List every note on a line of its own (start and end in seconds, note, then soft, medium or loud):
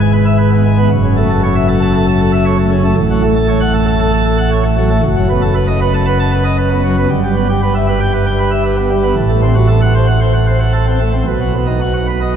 0.00 0.87 G#1 medium
0.00 0.87 G#2 medium
0.00 0.12 G#5 medium
0.13 0.25 B4 medium
0.26 0.37 E5 medium
0.38 0.50 B4 medium
0.52 0.64 B3 medium
0.66 0.77 G#3 medium
0.78 0.89 B3 medium
0.91 2.93 F#1 medium
0.91 2.93 F#2 medium
1.04 1.16 C#3 medium
1.17 1.28 A3 medium
1.30 1.41 A4 medium
1.43 1.54 C#5 medium
1.56 1.67 E5 medium
1.68 1.80 A4 medium
1.82 1.93 A5 loud
1.94 2.06 A4 medium
2.07 2.19 A5 medium
2.20 2.31 A4 medium
2.33 2.44 E5 medium
2.45 2.57 C#5 medium
2.59 2.70 A3 medium
2.71 2.83 C#3 medium
2.84 2.95 A3 medium
2.97 5.00 A1 medium
2.97 5.00 A2 loud
3.10 3.22 F#3 medium
3.23 3.34 A3 medium
3.36 3.47 A4 medium
3.48 3.60 C#5 medium
3.61 3.72 F#5 medium
3.74 3.86 A4 medium
3.87 3.99 A5 loud
4.00 4.12 A4 medium
4.13 4.24 A5 medium
4.26 4.37 A4 medium
4.38 4.50 F#5 medium
4.51 4.63 C#5 medium
4.64 4.76 A3 medium
4.77 4.89 F#3 medium
4.90 5.01 A3 medium
5.03 7.06 F#1 loud
5.03 7.06 F#2 medium
5.16 5.28 F#3 medium
5.30 5.41 B3 medium
5.42 5.54 A4 medium
5.55 5.67 B4 medium
5.68 5.79 D#5 medium
5.81 5.92 B4 medium
5.94 6.05 A5 loud
6.07 6.18 B4 medium
6.19 6.31 A5 medium
6.32 6.44 B4 medium
6.45 6.57 D#5 medium
6.58 6.70 B4 medium
6.71 6.83 B3 medium
6.84 6.96 F#3 medium
6.98 7.09 B3 medium
7.10 9.13 G1 loud
7.10 9.13 G2 medium
7.23 7.35 G3 medium
7.36 7.48 B3 medium
7.49 7.61 G4 medium
7.62 7.74 B4 medium
7.75 7.87 E5 medium
7.88 8.00 B4 medium
8.01 8.12 G5 medium
8.13 8.25 B4 medium
8.26 8.38 G5 medium
8.39 8.51 B4 medium
8.51 8.64 E5 medium
8.64 8.76 B4 medium
8.78 8.90 B3 medium
8.90 9.02 G3 medium
9.03 9.15 B3 medium
9.16 11.23 A1 medium
9.16 11.23 A2 medium
9.29 9.41 A3 medium
9.42 9.54 C4 medium
9.55 9.67 F#4 medium
9.68 9.80 A4 medium
9.82 9.93 F#5 medium
9.95 10.07 C5 medium
10.08 10.19 F#5 medium
10.21 10.33 C5 medium
10.34 10.46 F#5 medium
10.47 10.59 C5 medium
10.60 10.72 F#5 medium
10.73 10.85 A4 medium
10.87 10.99 C4 medium
11.00 11.12 A3 soft
11.14 11.25 C4 medium
11.27 12.37 B1 medium
11.27 12.37 B2 medium
11.41 11.53 F#3 soft
11.55 11.66 B3 medium
11.67 11.79 D#4 soft
11.81 11.93 F#4 medium
11.94 12.06 F#5 medium
12.08 12.20 B4 medium
12.21 12.33 D#5 medium